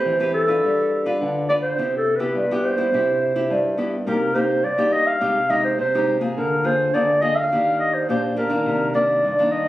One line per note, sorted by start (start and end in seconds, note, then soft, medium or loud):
0.00 0.15 C4 medium
0.00 0.15 G4 medium
0.00 0.15 B4 medium
0.00 0.31 C5 medium
0.05 0.60 E3 medium
0.20 0.44 C4 medium
0.20 0.44 G4 medium
0.20 0.44 B4 medium
0.34 1.16 A4 medium
0.48 1.01 D4 medium
0.48 1.01 F4 medium
0.48 1.01 B4 medium
0.64 1.18 G3 medium
1.06 1.44 D4 medium
1.06 1.44 F4 medium
1.06 1.45 B4 medium
1.21 1.75 D3 medium
1.49 1.73 D4 medium
1.49 1.74 F4 medium
1.49 1.74 B4 medium
1.49 1.56 D5 loud
1.62 1.94 C5 loud
1.78 2.33 C3 medium
1.78 2.05 B3 medium
1.78 2.05 E4 medium
1.78 2.05 G4 medium
1.97 2.17 A4 medium
2.16 2.44 B3 medium
2.16 2.66 B4 loud
2.20 2.44 E4 medium
2.20 2.45 G4 medium
2.35 2.90 G2 medium
2.51 2.74 B3 medium
2.51 2.75 E4 medium
2.51 2.75 G4 medium
2.64 3.79 C5 loud
2.77 2.88 B3 medium
2.77 2.88 E4 medium
2.77 2.88 G4 medium
2.93 3.47 C3 medium
2.93 3.32 E4 medium
2.93 3.32 G4 medium
3.36 3.74 E4 medium
3.36 3.74 G4 medium
3.50 4.05 G2 medium
3.78 3.95 B3 medium
3.78 3.95 E4 medium
3.78 3.95 G4 medium
4.07 4.61 C3 medium
4.07 4.31 A#3 medium
4.07 4.31 D#4 medium
4.07 4.31 G4 medium
4.07 4.36 A#4 medium
4.35 4.62 A#3 soft
4.35 4.62 D#4 soft
4.35 4.63 G4 medium
4.35 4.66 C5 medium
4.64 5.19 G2 medium
4.64 4.94 D5 medium
4.78 5.17 A#3 medium
4.78 5.17 D#4 medium
4.78 5.17 G4 medium
4.93 5.08 D#5 medium
5.07 5.52 F5 loud
5.21 5.76 C3 medium
5.21 5.38 G#3 medium
5.21 5.38 D#4 medium
5.21 5.39 G4 medium
5.50 5.77 G#3 medium
5.50 5.77 D#4 medium
5.50 5.77 G4 medium
5.50 5.64 D#5 medium
5.64 5.78 C5 medium
5.79 6.33 C3 medium
5.79 6.20 C5 medium
5.95 6.18 G#3 medium
5.95 6.18 D#4 medium
5.95 6.19 G4 medium
6.21 6.60 A#3 medium
6.21 6.60 F4 medium
6.21 6.60 G#4 medium
6.36 6.92 D3 medium
6.36 6.67 A#4 medium
6.64 6.82 A#3 medium
6.64 6.82 F4 medium
6.64 6.82 G#4 medium
6.64 6.96 C5 medium
6.94 7.48 D3 medium
6.94 7.11 A#3 medium
6.94 7.11 F4 soft
6.94 7.11 G#4 medium
6.94 7.23 D5 medium
7.21 7.39 A#3 medium
7.21 7.39 F4 medium
7.21 7.39 G#4 medium
7.21 7.37 D#5 loud
7.35 7.79 F5 loud
7.52 8.06 D#3 medium
7.52 8.04 A#3 medium
7.52 8.04 D4 medium
7.52 8.05 G4 medium
7.80 7.96 D#5 medium
7.94 8.09 C5 medium
8.09 8.63 A#2 medium
8.09 8.33 A#3 medium
8.09 8.33 D4 medium
8.09 8.33 G4 medium
8.09 8.22 C5 medium
8.36 8.47 A#3 medium
8.36 8.47 D4 medium
8.36 8.47 G4 medium
8.36 8.91 A#4 medium
8.49 8.89 D#3 medium
8.49 8.89 A#3 medium
8.49 8.90 D4 medium
8.65 9.20 C3 medium
8.94 9.33 D#3 soft
8.94 9.33 A#3 medium
8.94 9.33 D4 medium
8.94 9.53 D5 medium
9.24 9.68 G2 medium
9.39 9.68 D#3 medium
9.39 9.68 A#3 medium
9.39 9.68 D4 medium
9.52 9.68 D#5 loud